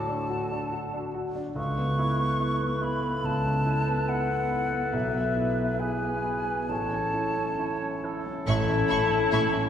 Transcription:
Already playing: D2 A2 D4 F#4 A4 A5
0.08 D4
0.30 F#4
0.51 D4
0.72 F#4
0.94 D4
1.14 F#4
1.35 D4
1.55 C#2 A4 B4 C#6
1.77 B3
1.99 E4
2.19 B3
2.40 E4
2.61 B3
2.81 E4 B5
3.02 B3
3.24 C#2 A5
3.45 C#3
3.66 E4
3.87 B3
4.09 E4 F#5
4.29 B3
4.51 E4
4.72 B3
4.93 B1 E5
5.14 B3
5.36 E4
5.57 B3
5.79 E4 G#4 G#5
6.01 B3
6.24 E4
6.45 B3
6.69 A1 A4 C#5 A5
6.92 C#4
7.14 E4
7.37 C#4
7.59 E4 C#5
7.82 C#4
8.04 E4 A4
8.26 C#4
8.47 A1 A2 E4 A4 E5 A5 B5 C#6
8.69 C#4
8.88 A1 A2 E4 E5 B5 C#6
9.11 C#4
9.31 A1 A2 E4 E5 B5 C#6
9.53 C#4

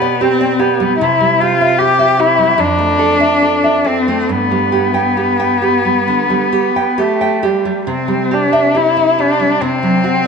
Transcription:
Already playing: B2 B3 G4
0.02 D5
0.21 C4 G4
0.41 D5
0.59 B3 G4
0.80 G3
0.99 C3 E4
1.21 G3
1.40 F4 G4
1.61 E5
1.79 G4
1.99 E5
2.19 E4 G4
2.38 G3
2.58 F2 D4
2.79 A3
2.99 A4
3.20 E5
3.42 A4
3.64 E5
3.84 C4 A4
4.08 A3
4.29 G2 B3
4.51 G3
4.72 G4
4.94 G5
5.17 G4
5.40 G5
5.62 G4
5.85 G3
6.08 D3
6.30 G3
6.53 G4
6.76 G5
6.98 A3 G4
7.21 G5
7.43 G3 G4
7.65 G3
7.87 C3 C4
8.08 G3
8.31 D4 G4
8.53 E5
8.75 E4 G4
8.97 E5
9.19 D4 G4
9.40 G3
9.61 C3 C4
9.83 F#3
10.04 F#4

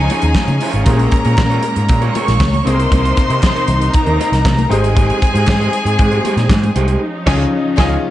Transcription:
Already playing: C#3 F3 C#4 D#4 F4 G#4 G#5
0.10 D#4 F4 C#5, closed hi-hat, muted conga
0.22 D#2, muted clean electric guitar stroke, closed hi-hat
0.35 muted clean electric guitar stroke, kick, snare, clap, high conga
0.48 C#3, muted clean electric guitar stroke, closed hi-hat, high conga
0.60 D#4 F4 C#5, open hi-hat
0.73 G#1 D#4 F4 C#5, closed hi-hat
0.86 A#1 A#2 G#3 A#3 C#4 F4 G#4 A#4 C#5 A#5, kick, closed hi-hat, muted conga
0.99 closed hi-hat
1.11 muted clean electric guitar stroke, kick, clap, closed hi-hat
1.25 A#2 F4 G#4 C#5, closed hi-hat
1.37 A#2, muted clean electric guitar stroke, kick, snare, clap, high conga
1.50 F4 G#4 C#5, closed hi-hat
1.63 muted clean electric guitar stroke, closed hi-hat
1.76 G#2, muted clean electric guitar stroke, closed hi-hat
1.89 A#2, muted clean electric guitar stroke, kick, closed hi-hat
2.02 F4 G#4 C#5, closed hi-hat
2.15 F4 G#4 C#5 C#6, closed hi-hat, muted conga
2.28 A#1, muted clean electric guitar stroke, snare, closed hi-hat
2.40 C#2, muted clean electric guitar stroke, kick, snare, clap, high conga
2.53 muted clean electric guitar stroke, closed hi-hat, high conga
2.65 C2 C3 C4 D#4 G#4 A#4 C5 C6, closed hi-hat
2.73 A#4
2.79 D#4 A#4 C5, closed hi-hat
2.92 C2 D#4 A#4 C5, kick, closed hi-hat, muted conga
3.05 closed hi-hat
3.17 muted clean electric guitar stroke, kick, clap, closed hi-hat
3.30 C3 D#4 A#4 C5, closed hi-hat
3.43 muted clean electric guitar stroke, kick, snare, clap, high conga
3.56 D#4 A#4 C5, closed hi-hat
3.68 C2, muted clean electric guitar stroke, closed hi-hat, low conga
3.81 muted clean electric guitar stroke, closed hi-hat
3.94 A#4 A#5, muted clean electric guitar stroke, kick, closed hi-hat
4.06 D#2 D#4 A#4 C5, closed hi-hat
4.19 D#4 A#4 C5, closed hi-hat, muted conga
4.32 C2, muted clean electric guitar stroke, snare, closed hi-hat
4.45 C2, muted clean electric guitar stroke, kick, snare, clap, high conga
4.57 muted clean electric guitar stroke, closed hi-hat, high conga
4.69 G#1 G#3 C4 D#4 G4 G#4 C5 G#5, closed hi-hat
4.82 D#4 G4 C5, closed hi-hat
4.94 D#4 G4 C5, kick, closed hi-hat, muted conga
5.10 closed hi-hat
5.21 muted clean electric guitar stroke, kick, clap, closed hi-hat
5.34 G#2 D#4 G4 C5, closed hi-hat
5.47 G#2, muted clean electric guitar stroke, kick, snare, clap, high conga
5.60 D#4 G4 C5, closed hi-hat
5.73 muted clean electric guitar stroke, closed hi-hat
5.85 G#2, muted clean electric guitar stroke, closed hi-hat
5.98 G#2, muted clean electric guitar stroke, kick, closed hi-hat
6.11 D#4 G4 C5, closed hi-hat
6.25 D#4 G4 C5, closed hi-hat, muted conga
6.37 A#2, muted clean electric guitar stroke, snare, closed hi-hat
6.49 G#2, muted clean electric guitar stroke, kick, snare, clap, high conga
6.63 muted clean electric guitar stroke, closed hi-hat, high conga
6.76 C2 D#4 G4 C5, closed hi-hat
6.88 D#4 G4 C5, closed hi-hat
7.00 F3 C#4 D#4
7.26 C#2 C#3 C#4 D#4 F4 G#4 C#5 G#5, kick, snare, crash
7.77 C#2 C#3 C#4 D#4 F4 G#4 C#5 G#5, kick, snare
8.04 G#3 A#3

